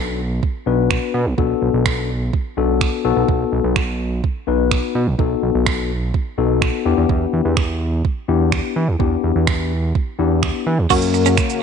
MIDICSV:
0, 0, Header, 1, 7, 480
1, 0, Start_track
1, 0, Tempo, 476190
1, 1391, Time_signature, 4, 2, 24, 8
1, 11718, End_track
2, 0, Start_track
2, 0, Title_t, "Clean electric guitar"
2, 0, Program_c, 0, 27
2, 10991, Note_on_c, 0, 66, 80
2, 11063, Note_off_c, 0, 66, 0
2, 11349, Note_on_c, 0, 61, 77
2, 11422, Note_off_c, 0, 61, 0
2, 11718, End_track
3, 0, Start_track
3, 0, Title_t, "Tine electric piano"
3, 0, Program_c, 1, 4
3, 0, Note_on_c, 1, 59, 91
3, 0, Note_on_c, 1, 62, 78
3, 0, Note_on_c, 1, 66, 80
3, 0, Note_on_c, 1, 69, 95
3, 193, Note_off_c, 1, 59, 0
3, 194, Note_off_c, 1, 62, 0
3, 194, Note_off_c, 1, 66, 0
3, 196, Note_off_c, 1, 69, 0
3, 669, Note_on_c, 1, 59, 84
3, 671, Note_on_c, 1, 62, 75
3, 672, Note_on_c, 1, 66, 75
3, 675, Note_on_c, 1, 71, 93
3, 1212, Note_off_c, 1, 59, 0
3, 1213, Note_off_c, 1, 62, 0
3, 1213, Note_off_c, 1, 66, 0
3, 1215, Note_off_c, 1, 71, 0
3, 1388, Note_on_c, 1, 59, 87
3, 1389, Note_on_c, 1, 62, 76
3, 1391, Note_on_c, 1, 66, 75
3, 1393, Note_on_c, 1, 69, 97
3, 2112, Note_off_c, 1, 59, 0
3, 2113, Note_off_c, 1, 62, 0
3, 2114, Note_off_c, 1, 66, 0
3, 2114, Note_off_c, 1, 69, 0
3, 2590, Note_on_c, 1, 59, 82
3, 2591, Note_on_c, 1, 62, 73
3, 2595, Note_on_c, 1, 66, 76
3, 2596, Note_on_c, 1, 69, 91
3, 3056, Note_off_c, 1, 59, 0
3, 3059, Note_off_c, 1, 66, 0
3, 3061, Note_off_c, 1, 69, 0
3, 3068, Note_on_c, 1, 59, 85
3, 3070, Note_on_c, 1, 63, 80
3, 3071, Note_off_c, 1, 62, 0
3, 3071, Note_on_c, 1, 66, 82
3, 3073, Note_on_c, 1, 69, 99
3, 3837, Note_off_c, 1, 59, 0
3, 3838, Note_off_c, 1, 63, 0
3, 3839, Note_off_c, 1, 66, 0
3, 3840, Note_off_c, 1, 69, 0
3, 4508, Note_on_c, 1, 59, 82
3, 4511, Note_on_c, 1, 63, 75
3, 4512, Note_on_c, 1, 66, 72
3, 4513, Note_on_c, 1, 71, 94
3, 5051, Note_off_c, 1, 59, 0
3, 5053, Note_off_c, 1, 63, 0
3, 5053, Note_off_c, 1, 66, 0
3, 5054, Note_off_c, 1, 71, 0
3, 5228, Note_on_c, 1, 59, 83
3, 5229, Note_on_c, 1, 63, 81
3, 5231, Note_on_c, 1, 66, 79
3, 5233, Note_on_c, 1, 69, 91
3, 5952, Note_off_c, 1, 59, 0
3, 5953, Note_off_c, 1, 63, 0
3, 5953, Note_off_c, 1, 66, 0
3, 5955, Note_off_c, 1, 69, 0
3, 6428, Note_on_c, 1, 59, 83
3, 6430, Note_on_c, 1, 63, 79
3, 6432, Note_on_c, 1, 66, 76
3, 6433, Note_on_c, 1, 69, 89
3, 6896, Note_off_c, 1, 59, 0
3, 6908, Note_on_c, 1, 59, 86
3, 6910, Note_off_c, 1, 63, 0
3, 6910, Note_on_c, 1, 62, 82
3, 6911, Note_off_c, 1, 66, 0
3, 6912, Note_off_c, 1, 69, 0
3, 6912, Note_on_c, 1, 64, 82
3, 6913, Note_on_c, 1, 67, 102
3, 7678, Note_off_c, 1, 59, 0
3, 7679, Note_off_c, 1, 62, 0
3, 7679, Note_off_c, 1, 64, 0
3, 7680, Note_off_c, 1, 67, 0
3, 8348, Note_on_c, 1, 59, 84
3, 8350, Note_on_c, 1, 62, 77
3, 8350, Note_on_c, 1, 64, 75
3, 8352, Note_on_c, 1, 67, 95
3, 8891, Note_off_c, 1, 59, 0
3, 8892, Note_off_c, 1, 62, 0
3, 8893, Note_off_c, 1, 64, 0
3, 8893, Note_off_c, 1, 67, 0
3, 9067, Note_on_c, 1, 59, 85
3, 9068, Note_on_c, 1, 62, 77
3, 9071, Note_on_c, 1, 64, 78
3, 9072, Note_on_c, 1, 67, 95
3, 9791, Note_off_c, 1, 59, 0
3, 9792, Note_off_c, 1, 62, 0
3, 9793, Note_off_c, 1, 64, 0
3, 9794, Note_off_c, 1, 67, 0
3, 10268, Note_on_c, 1, 59, 84
3, 10269, Note_on_c, 1, 62, 77
3, 10270, Note_on_c, 1, 64, 75
3, 10273, Note_on_c, 1, 67, 88
3, 10811, Note_off_c, 1, 59, 0
3, 10812, Note_off_c, 1, 62, 0
3, 10813, Note_off_c, 1, 64, 0
3, 10814, Note_off_c, 1, 67, 0
3, 10986, Note_on_c, 1, 58, 87
3, 10987, Note_on_c, 1, 61, 78
3, 10990, Note_on_c, 1, 66, 78
3, 10991, Note_on_c, 1, 70, 95
3, 11711, Note_off_c, 1, 58, 0
3, 11712, Note_off_c, 1, 61, 0
3, 11713, Note_off_c, 1, 66, 0
3, 11713, Note_off_c, 1, 70, 0
3, 11718, End_track
4, 0, Start_track
4, 0, Title_t, "Supersaw synth"
4, 0, Program_c, 2, 81
4, 10988, Note_on_c, 2, 49, 81
4, 10989, Note_on_c, 2, 54, 73
4, 10989, Note_on_c, 2, 66, 88
4, 10990, Note_on_c, 2, 58, 72
4, 11718, Note_off_c, 2, 49, 0
4, 11718, Note_off_c, 2, 54, 0
4, 11718, Note_off_c, 2, 58, 0
4, 11718, Note_off_c, 2, 66, 0
4, 11718, End_track
5, 0, Start_track
5, 0, Title_t, "Analog synth bass"
5, 0, Program_c, 3, 38
5, 0, Note_on_c, 3, 35, 87
5, 412, Note_off_c, 3, 35, 0
5, 670, Note_on_c, 3, 35, 87
5, 1003, Note_off_c, 3, 35, 0
5, 1150, Note_on_c, 3, 47, 103
5, 1270, Note_on_c, 3, 35, 80
5, 1285, Note_off_c, 3, 47, 0
5, 1353, Note_off_c, 3, 35, 0
5, 1391, Note_on_c, 3, 35, 98
5, 1557, Note_off_c, 3, 35, 0
5, 1630, Note_on_c, 3, 35, 87
5, 1714, Note_off_c, 3, 35, 0
5, 1749, Note_on_c, 3, 35, 84
5, 2332, Note_off_c, 3, 35, 0
5, 2591, Note_on_c, 3, 35, 89
5, 2924, Note_off_c, 3, 35, 0
5, 3070, Note_on_c, 3, 35, 101
5, 3154, Note_off_c, 3, 35, 0
5, 3189, Note_on_c, 3, 35, 85
5, 3273, Note_off_c, 3, 35, 0
5, 3311, Note_on_c, 3, 35, 99
5, 3477, Note_off_c, 3, 35, 0
5, 3551, Note_on_c, 3, 35, 86
5, 3634, Note_off_c, 3, 35, 0
5, 3670, Note_on_c, 3, 35, 88
5, 4252, Note_off_c, 3, 35, 0
5, 4511, Note_on_c, 3, 35, 90
5, 4843, Note_off_c, 3, 35, 0
5, 4990, Note_on_c, 3, 47, 104
5, 5111, Note_on_c, 3, 35, 85
5, 5126, Note_off_c, 3, 47, 0
5, 5194, Note_off_c, 3, 35, 0
5, 5231, Note_on_c, 3, 35, 100
5, 5397, Note_off_c, 3, 35, 0
5, 5470, Note_on_c, 3, 35, 88
5, 5553, Note_off_c, 3, 35, 0
5, 5591, Note_on_c, 3, 35, 87
5, 6172, Note_off_c, 3, 35, 0
5, 6429, Note_on_c, 3, 35, 89
5, 6762, Note_off_c, 3, 35, 0
5, 6911, Note_on_c, 3, 40, 103
5, 6994, Note_off_c, 3, 40, 0
5, 7031, Note_on_c, 3, 40, 85
5, 7114, Note_off_c, 3, 40, 0
5, 7151, Note_on_c, 3, 40, 102
5, 7317, Note_off_c, 3, 40, 0
5, 7391, Note_on_c, 3, 40, 89
5, 7474, Note_off_c, 3, 40, 0
5, 7510, Note_on_c, 3, 40, 91
5, 8092, Note_off_c, 3, 40, 0
5, 8351, Note_on_c, 3, 40, 84
5, 8683, Note_off_c, 3, 40, 0
5, 8831, Note_on_c, 3, 52, 100
5, 8951, Note_on_c, 3, 40, 84
5, 8966, Note_off_c, 3, 52, 0
5, 9034, Note_off_c, 3, 40, 0
5, 9070, Note_on_c, 3, 40, 98
5, 9236, Note_off_c, 3, 40, 0
5, 9311, Note_on_c, 3, 40, 86
5, 9394, Note_off_c, 3, 40, 0
5, 9429, Note_on_c, 3, 40, 89
5, 10011, Note_off_c, 3, 40, 0
5, 10270, Note_on_c, 3, 40, 88
5, 10603, Note_off_c, 3, 40, 0
5, 10750, Note_on_c, 3, 52, 101
5, 10871, Note_on_c, 3, 40, 87
5, 10886, Note_off_c, 3, 52, 0
5, 10954, Note_off_c, 3, 40, 0
5, 10990, Note_on_c, 3, 42, 105
5, 11489, Note_off_c, 3, 42, 0
5, 11718, End_track
6, 0, Start_track
6, 0, Title_t, "Muted clean electric guitar strokes"
6, 11230, Note_on_c, 9, 29, 43
6, 11331, Note_off_c, 9, 29, 0
6, 11470, Note_on_c, 9, 29, 45
6, 11571, Note_off_c, 9, 29, 0
6, 11718, End_track
7, 0, Start_track
7, 0, Title_t, "Drums"
7, 432, Note_on_c, 9, 36, 102
7, 532, Note_off_c, 9, 36, 0
7, 910, Note_on_c, 9, 36, 94
7, 913, Note_on_c, 9, 26, 109
7, 1011, Note_off_c, 9, 36, 0
7, 1014, Note_off_c, 9, 26, 0
7, 1391, Note_on_c, 9, 36, 108
7, 1492, Note_off_c, 9, 36, 0
7, 1871, Note_on_c, 9, 26, 109
7, 1871, Note_on_c, 9, 36, 105
7, 1972, Note_off_c, 9, 26, 0
7, 1972, Note_off_c, 9, 36, 0
7, 2353, Note_on_c, 9, 36, 103
7, 2453, Note_off_c, 9, 36, 0
7, 2831, Note_on_c, 9, 36, 97
7, 2835, Note_on_c, 9, 26, 102
7, 2931, Note_off_c, 9, 36, 0
7, 2936, Note_off_c, 9, 26, 0
7, 3311, Note_on_c, 9, 36, 112
7, 3412, Note_off_c, 9, 36, 0
7, 3790, Note_on_c, 9, 26, 114
7, 3791, Note_on_c, 9, 36, 106
7, 3891, Note_off_c, 9, 26, 0
7, 3892, Note_off_c, 9, 36, 0
7, 4272, Note_on_c, 9, 36, 102
7, 4373, Note_off_c, 9, 36, 0
7, 4750, Note_on_c, 9, 36, 98
7, 4752, Note_on_c, 9, 26, 103
7, 4851, Note_off_c, 9, 36, 0
7, 4853, Note_off_c, 9, 26, 0
7, 5231, Note_on_c, 9, 36, 107
7, 5332, Note_off_c, 9, 36, 0
7, 5710, Note_on_c, 9, 26, 114
7, 5711, Note_on_c, 9, 36, 107
7, 5811, Note_off_c, 9, 26, 0
7, 5812, Note_off_c, 9, 36, 0
7, 6192, Note_on_c, 9, 36, 104
7, 6293, Note_off_c, 9, 36, 0
7, 6670, Note_on_c, 9, 36, 99
7, 6673, Note_on_c, 9, 26, 102
7, 6771, Note_off_c, 9, 36, 0
7, 6774, Note_off_c, 9, 26, 0
7, 7151, Note_on_c, 9, 36, 114
7, 7251, Note_off_c, 9, 36, 0
7, 7630, Note_on_c, 9, 26, 105
7, 7631, Note_on_c, 9, 36, 111
7, 7730, Note_off_c, 9, 26, 0
7, 7731, Note_off_c, 9, 36, 0
7, 8111, Note_on_c, 9, 36, 102
7, 8212, Note_off_c, 9, 36, 0
7, 8589, Note_on_c, 9, 36, 95
7, 8591, Note_on_c, 9, 26, 101
7, 8690, Note_off_c, 9, 36, 0
7, 8692, Note_off_c, 9, 26, 0
7, 9070, Note_on_c, 9, 36, 110
7, 9171, Note_off_c, 9, 36, 0
7, 9549, Note_on_c, 9, 26, 109
7, 9550, Note_on_c, 9, 36, 105
7, 9650, Note_off_c, 9, 26, 0
7, 9651, Note_off_c, 9, 36, 0
7, 10031, Note_on_c, 9, 36, 106
7, 10132, Note_off_c, 9, 36, 0
7, 10509, Note_on_c, 9, 36, 94
7, 10512, Note_on_c, 9, 26, 106
7, 10610, Note_off_c, 9, 36, 0
7, 10613, Note_off_c, 9, 26, 0
7, 10988, Note_on_c, 9, 42, 63
7, 10988, Note_on_c, 9, 49, 90
7, 10988, Note_on_c, 9, 82, 68
7, 10990, Note_on_c, 9, 36, 113
7, 11089, Note_off_c, 9, 42, 0
7, 11089, Note_off_c, 9, 49, 0
7, 11089, Note_off_c, 9, 82, 0
7, 11091, Note_off_c, 9, 36, 0
7, 11108, Note_on_c, 9, 42, 50
7, 11108, Note_on_c, 9, 82, 48
7, 11209, Note_off_c, 9, 42, 0
7, 11209, Note_off_c, 9, 82, 0
7, 11229, Note_on_c, 9, 82, 55
7, 11330, Note_off_c, 9, 82, 0
7, 11347, Note_on_c, 9, 42, 63
7, 11347, Note_on_c, 9, 82, 86
7, 11448, Note_off_c, 9, 42, 0
7, 11448, Note_off_c, 9, 82, 0
7, 11465, Note_on_c, 9, 42, 78
7, 11465, Note_on_c, 9, 82, 80
7, 11466, Note_on_c, 9, 26, 112
7, 11469, Note_on_c, 9, 36, 110
7, 11566, Note_off_c, 9, 42, 0
7, 11566, Note_off_c, 9, 82, 0
7, 11567, Note_off_c, 9, 26, 0
7, 11570, Note_off_c, 9, 36, 0
7, 11589, Note_on_c, 9, 42, 54
7, 11589, Note_on_c, 9, 82, 53
7, 11690, Note_off_c, 9, 42, 0
7, 11690, Note_off_c, 9, 82, 0
7, 11718, End_track
0, 0, End_of_file